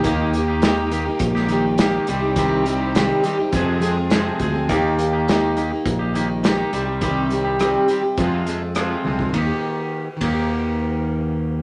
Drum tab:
RD |----------------|----------------|----------------|----------------|
HH |x-x-x-x-x-x-x-x-|x-x-x-x-x-x-x-x-|x-x-x-x-x-x-x-x-|x-x-x-x-x-x-x---|
SD |----o----o--o---|----o-------o---|----o-------o---|----r-------r---|
T1 |----------------|----------------|----------------|--------------o-|
BD |o-------o-------|o-------o-----o-|o-------o-------|o-------o------o|

RD |x-----x---------|
HH |----------------|
SD |----------------|
T1 |----------------|
BD |o-----o---------|